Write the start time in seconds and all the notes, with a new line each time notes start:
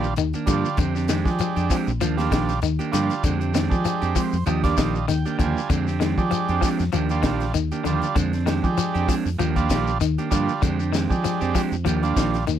Already playing: A#1 D#3 G3 D4 F4
0.04 shekere
0.16 D#2 D#3, closed hi-hat, shekere
0.33 A#3 D4, muted clean electric guitar stroke, closed hi-hat, shekere
0.46 G2 D3 F3 G3 A#3 D4 F4 G4, kick, closed hi-hat, shekere
0.65 shekere
0.77 F2 D3 C4 D4 G4, muted clean electric guitar stroke, kick, closed hi-hat, shekere
0.95 C4 D4 G4, snare, shekere
1.08 D#3 G#3 C4 D4 G4, snare, closed hi-hat, shekere
1.25 F3 G#3 D4 G4, kick, snare, shekere
1.39 F3, closed hi-hat, shekere
1.56 F2 D4 G4, muted clean electric guitar stroke, closed hi-hat, shekere
1.70 F3 G#3 C4 D4 G4, kick, open hi-hat, shekere
1.87 A#1, closed hi-hat, shekere
2.01 D#2 F3 A#3 D4, muted clean electric guitar stroke, closed hi-hat, shekere
2.17 G3 A#3 D4 F4 G4, snare, closed hi-hat, shekere
2.31 A#1 D#3 F3 A#3 D4 G4, kick, snare, closed hi-hat, shekere
2.49 snare, closed hi-hat, shekere
2.62 D#2 D#3, closed hi-hat, shekere
2.79 A#3 D4 G4, closed hi-hat, shekere
2.91 G2 D3 F3 G3 A#3 D4 F4 G4, snare, closed hi-hat, shekere
3.10 closed hi-hat, shekere
3.23 F2 D3 G#3 C4 D4 G4, kick, closed hi-hat, shekere
3.40 C4 D4 G4, closed hi-hat, shekere
3.54 D#3 G#3 C4 D4 G4, snare, closed hi-hat, shekere
3.70 F3 G#3 D4 G4, kick, shekere
3.85 F3, closed hi-hat, shekere
4.02 F2 C4 D4 G4, closed hi-hat, shekere
4.15 F3 G#3 C4 G4 C5, kick, open hi-hat, shekere
4.33 F2, shekere
4.46 D#2 F3 D4 G4 D#5, muted clean electric guitar stroke, closed hi-hat, shekere
4.63 G3 A#3 D4 F4 G4 D5, kick, snare, closed hi-hat, shekere
4.77 A#1 D#3 F3 A#3 D4 G4 D#5, kick, snare, closed hi-hat, shekere
4.95 shekere
5.08 D#2 D#3 G5, snare, closed hi-hat, shekere
5.26 A#3 D4 G4, closed hi-hat, shekere
5.39 D#2 D3 F3 G3 A#3 D4 F4 G4 G#5, kick, closed hi-hat, shekere
5.58 shekere
5.70 F2 D3 G#3 C4 D4 G4, kick, closed hi-hat, shekere
5.88 C4 D4 G4, snare, shekere
6.00 D#3 G#3 C4 D4 G4, snare, closed hi-hat, shekere
6.18 F3 G#3 D4 G4, kick, shekere
6.31 F3, closed hi-hat, shekere
6.49 F2 C4 D4 G4, closed hi-hat, shekere
6.61 F3 G#3 C4 D4 G4, kick, snare, open hi-hat, shekere
6.79 F2, snare, closed hi-hat, shekere
6.92 D#2 F3 A#3 D4 G4, closed hi-hat, shekere
7.09 G3 A#3 D4 F4 G4, closed hi-hat, shekere
7.23 A#1 D#3 F3 A#3 D4 G4, kick, snare, closed hi-hat, shekere
7.40 snare, closed hi-hat, shekere
7.54 D#2 D#3, closed hi-hat, shekere
7.71 A#3 D4 G4, closed hi-hat, shekere
7.84 D#2 D3 F3 G3 A#3 D4 F4 G4, closed hi-hat, shekere
8.02 closed hi-hat, shekere
8.15 F2 D3 G#3 C4 D4, muted clean electric guitar stroke, kick, closed hi-hat, shekere
8.33 C4 D4, snare, closed hi-hat, shekere
8.46 D#3 G#3 C4 D4 G4, snare, closed hi-hat, shekere
8.64 F3 G#3 D4 G4, kick, shekere
8.78 F3, closed hi-hat, shekere
8.94 F2 C4 D4 G4, closed hi-hat, shekere
9.08 F3 G#3 C4 D4, muted clean electric guitar stroke, kick, open hi-hat, shekere
9.26 F2, shekere
9.38 D#2 F3 A#3 D4 G4, closed hi-hat, shekere
9.55 G3 A#3 D4 F4 G4, kick, closed hi-hat, shekere
9.70 A#1 D#3 F3 A#3 D4 G4, kick, snare, closed hi-hat, shekere
9.87 shekere
10.01 D#2 D#3, closed hi-hat, shekere
10.18 A#3 D4 G4, closed hi-hat, shekere
10.30 G2 D3 F3 G3 A#3 D4 F4 G4, kick, closed hi-hat, shekere
10.49 shekere
10.62 F2 D3 G#3 C4 D4 G4, kick, closed hi-hat, shekere
10.79 C4 D4 G4, shekere
10.93 D#3 G#3 C4 D4 G4, snare, closed hi-hat, shekere
11.09 F3 G#3 D4 G4, kick, shekere
11.24 F3, snare, closed hi-hat, shekere
11.41 F2 C4 D4 G4, closed hi-hat, shekere
11.55 F3 G#3 C4 D4 G4, kick, open hi-hat, shekere
11.72 F2, closed hi-hat, shekere
11.85 D#2 F3 A#3 D4 G4, closed hi-hat, shekere
12.02 G3 A#3 D4 F4, muted clean electric guitar stroke, closed hi-hat, shekere
12.16 A#1 D#3 F3 A#3 D4 G4, kick, snare, closed hi-hat, shekere
12.34 snare, closed hi-hat, shekere
12.47 D#2 D#3, closed hi-hat, shekere